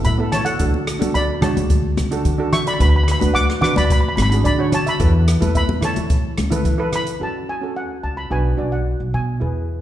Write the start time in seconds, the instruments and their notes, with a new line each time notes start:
0.05 upright bass A2, steel pan E5 B5, kick, closed hi-hat
0.18 steel pan B3 E4 A4
0.32 steel pan C#5 A5, cross-stick, closed hi-hat, low conga
0.45 steel pan A4 F#5, closed hi-hat
0.59 upright bass D2, steel pan D4 F#4 A4, kick, closed hi-hat
0.74 high conga
0.87 cross-stick, closed hi-hat
0.99 upright bass D2, steel pan D4 F#4 A4, closed hi-hat, high conga
1.14 steel pan D5 B5, kick, closed hi-hat
1.41 steel pan G#3 D4 F#4 C#5 A5, cross-stick, closed hi-hat, low conga
1.57 upright bass D2, closed hi-hat, high conga
1.70 kick, closed hi-hat
1.97 upright bass C#2, cross-stick, closed hi-hat, high conga
2.11 steel pan D4 F#4 A4, closed hi-hat
2.25 upright bass D3, kick, closed hi-hat
2.38 steel pan D4 F#4 A4
2.53 steel pan E5 C#6, cross-stick, closed hi-hat, low conga
2.67 steel pan D5 B5, closed hi-hat
2.74 steel pan B5
2.79 upright bass D2, steel pan D4 F#4 B4 B5, kick, closed hi-hat
2.89 steel pan B5
2.96 steel pan B5
3.04 steel pan B5
3.08 steel pan B5, cross-stick, closed hi-hat
3.20 upright bass D2, steel pan D4 F#4 B4 B5, closed hi-hat, high conga
3.34 steel pan F#5 D6, kick, closed hi-hat
3.50 cross-stick
3.61 steel pan D4 F#4 B4 F#5 D6, cross-stick, closed hi-hat, low conga
3.76 upright bass D2, steel pan D5 B5, closed hi-hat, high conga
3.85 steel pan B5
3.90 steel pan B5, kick, closed hi-hat
4.01 steel pan B5
4.09 steel pan B5
4.16 upright bass G#1, steel pan B5, cross-stick, closed hi-hat, high conga
4.22 steel pan B5
4.30 steel pan D4 F#4 G#4 B5, closed hi-hat
4.44 upright bass D3, steel pan D5 B5, kick, closed hi-hat
4.59 steel pan D4 F#4 C#5
4.72 steel pan C#5 A5, cross-stick, closed hi-hat, low conga
4.86 steel pan E5 B5, closed hi-hat
5.00 upright bass E2, steel pan E4 A4 B4, kick, closed hi-hat
5.28 cross-stick, closed hi-hat
5.40 upright bass E2, steel pan E4 A4 B4, closed hi-hat, high conga
5.55 steel pan E5 B5, kick, closed hi-hat
5.69 high conga
5.81 steel pan E4 A4 C#5 A5, cross-stick, closed hi-hat, low conga
5.96 upright bass E2, closed hi-hat, high conga
6.10 kick, closed hi-hat
6.38 upright bass C#2, cross-stick, closed hi-hat, high conga
6.50 steel pan E4 A4 B4, closed hi-hat, low conga
6.65 upright bass E3, kick, closed hi-hat
6.78 steel pan E4 A4 B4
6.92 steel pan B5, cross-stick, closed hi-hat, low conga
7.07 closed hi-hat
7.20 upright bass F#2, steel pan C#4 F#4 A4 A5
7.49 steel pan G#5
7.61 steel pan C#4 F#4 A4
7.76 steel pan F#5
7.90 upright bass C#2
8.03 upright bass C#2, steel pan A5
8.17 steel pan B5
8.30 upright bass B1, steel pan D4 F#4 B4 G#5
8.57 upright bass B1, steel pan D4 F#4 D5
8.72 steel pan F#5
9.00 upright bass B1
9.14 upright bass B2, steel pan G#5
9.40 upright bass E2, steel pan E4 G#4 B4